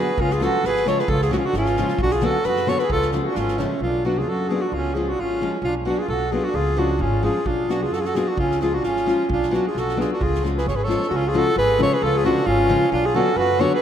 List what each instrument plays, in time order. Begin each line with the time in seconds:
Already playing: nylon-string guitar D3 F#3 B3 D4 F#4, accordion G#4
0.00 alto saxophone B4
0.18 upright bass C#2, accordion C#4, alto saxophone F4, kick
0.30 accordion F4, alto saxophone G#4, snare
0.40 nylon-string guitar C#3 F3 G#3 C#4 F4, accordion F#4, alto saxophone A4, snare
0.63 upright bass G#1, accordion G#4, alto saxophone B4, snare
0.76 snare
0.85 nylon-string guitar C#3 F3 G#3 C#4 F4, accordion A4, alto saxophone C#5, snare
0.99 accordion G#4, alto saxophone B4, snare
1.08 upright bass C#2, accordion F4, alto saxophone A4, kick
1.21 accordion F4, alto saxophone G#4, snare
1.31 nylon-string guitar C#3 F3 G#3 C#4 F4, accordion D4, alto saxophone F#4, snare
1.37 accordion C#4, alto saxophone F4
1.45 accordion D4, alto saxophone F#4
1.53 upright bass G#1, accordion C#4, alto saxophone F4, snare
1.65 snare
1.77 nylon-string guitar C#3 F3 G#3 C#4 F4, snare
1.89 snare
1.99 upright bass B1, accordion D4, alto saxophone F#4, kick
2.10 accordion F4, alto saxophone G#4, snare
2.20 nylon-string guitar D3 F#3 B3 D4 F#4, accordion F#4, snare
2.25 alto saxophone A4
2.43 upright bass F#2, alto saxophone B4, snare
2.47 accordion F#4
2.56 snare
2.66 nylon-string guitar D3 F#3 B3 D4 F#4, accordion A4, alto saxophone C#5, snare
2.79 accordion G#4, alto saxophone B4, snare
2.90 upright bass C#2, accordion F4, alto saxophone A4, kick
3.02 snare
3.12 nylon-string guitar C#3 F3 G#3 C#4 F4, snare
3.21 accordion F4, alto saxophone G#4
3.26 accordion D4, alto saxophone F#4
3.35 upright bass G#1, alto saxophone F4, snare
3.39 accordion C#4
3.48 snare
3.58 nylon-string guitar C#3 F3 G#3 C#4 F4, accordion A3, alto saxophone C#4, snare
3.80 upright bass B1, alto saxophone F4
3.85 accordion D4
4.05 nylon-string guitar F#3 B3 D4 F#4, accordion D4, alto saxophone F#4
4.18 accordion F4, alto saxophone G#4
4.27 upright bass F#2, accordion F#4, alto saxophone A4
4.48 nylon-string guitar F#3 B3 D4 F#4, alto saxophone G#4
4.54 accordion F4
4.61 alto saxophone F#4
4.66 accordion D4
4.72 upright bass C#2, alto saxophone F4
4.77 accordion C#4
4.95 nylon-string guitar F3 G#3 C#4 F4, alto saxophone G#4
4.99 accordion F4
5.09 accordion D4, alto saxophone F#4
5.18 upright bass G#1, accordion C#4, alto saxophone F4
5.41 nylon-string guitar F3 G#3 C#4 F4
5.62 upright bass B1, accordion D4, alto saxophone F4
5.85 nylon-string guitar F#3 B3 D4 F#4, accordion D4, alto saxophone F#4
5.98 accordion F4, alto saxophone G#4
6.08 upright bass B1, accordion F#4, alto saxophone A4
6.32 nylon-string guitar F#3 B3 D4 F#4, accordion F4, alto saxophone G#4
6.44 accordion D4, alto saxophone F#4
6.54 upright bass C#2, accordion F4, alto saxophone G#4
6.77 nylon-string guitar F3 G#3 C#4 F4, accordion D4, alto saxophone F#4
6.99 upright bass G#1, accordion C#4, alto saxophone F4
7.23 nylon-string guitar F3 G#3 C#4 F4, accordion F4, alto saxophone G#4
7.46 upright bass B1, accordion D4, alto saxophone F4, kick
7.68 nylon-string guitar F#3 B3 D4 F#4, accordion D4, alto saxophone F#4, snare
7.82 accordion F4, alto saxophone G#4
7.91 upright bass F#2, accordion F#4, alto saxophone A4, snare
7.99 accordion F4, alto saxophone G#4
8.05 accordion F#4, alto saxophone A4, snare
8.15 nylon-string guitar F#3 B3 D4 F#4, accordion F4, alto saxophone G#4, snare
8.28 accordion D4, alto saxophone F#4
8.37 upright bass C#2, accordion C#4, alto saxophone F4, kick
8.51 snare
8.61 nylon-string guitar F3 G#3 C#4 F4, accordion F4, alto saxophone G#4, snare
8.74 accordion D4, alto saxophone F#4
8.83 upright bass G#1, accordion C#4, alto saxophone F4, snare
8.97 snare
9.06 nylon-string guitar F3 G#3 C#4 F4, snare
9.29 upright bass B1, accordion D4, alto saxophone F4, kick
9.43 snare
9.51 nylon-string guitar F#3 B3 D4 F#4, accordion D4, alto saxophone F#4, snare
9.67 accordion F4, alto saxophone G#4
9.75 upright bass B1, accordion F#4, alto saxophone A4, snare
9.89 snare
9.97 nylon-string guitar F#3 B3 D4 F#4, accordion F4, alto saxophone G#4, snare
10.13 accordion D4, alto saxophone F#4
10.20 upright bass C#2, accordion F4, alto saxophone G#4, kick
10.35 snare
10.43 nylon-string guitar F3 G#3 C#4 F4, snare
10.57 accordion G#4, alto saxophone B4, snare
10.66 upright bass G#1, accordion G#4, alto saxophone C#5, snare
10.76 accordion G#4, alto saxophone B4
10.83 nylon-string guitar F3, accordion A4, alto saxophone C#5
10.88 nylon-string guitar G#3 C#4 F4, snare
11.03 snare
11.08 upright bass C#2, accordion D4, alto saxophone F#4
11.13 accordion C#4, alto saxophone F4
11.27 accordion F4, alto saxophone G#4
11.33 nylon-string guitar C#3 F3 G#3 C#4 F4, accordion F#4
11.38 alto saxophone A4
11.56 upright bass G#1, accordion G#4, alto saxophone B4
11.78 nylon-string guitar C#3 F3 G#3 C#4 F4, accordion A4
11.82 alto saxophone C#5
11.92 accordion G#4, alto saxophone B4
12.02 upright bass C#2, accordion F4, alto saxophone A4
12.16 accordion F4, alto saxophone G#4
12.24 nylon-string guitar C#3 F3 G#3 C#4 F4, accordion D4, alto saxophone F#4
12.46 upright bass G#1, accordion C#4, alto saxophone F4
12.69 nylon-string guitar C#3 F3 G#3 C#4 F4
12.92 upright bass B1, accordion D4, alto saxophone F4
13.04 accordion F4, alto saxophone G#4
13.14 nylon-string guitar D3 F#3 B3 D4 F#4, accordion F#4, alto saxophone A4
13.36 upright bass F#2, accordion F#4, alto saxophone B4
13.59 nylon-string guitar D3 F#3 B3 D4 F#4, accordion A4, alto saxophone C#5
13.74 accordion G#4, alto saxophone B4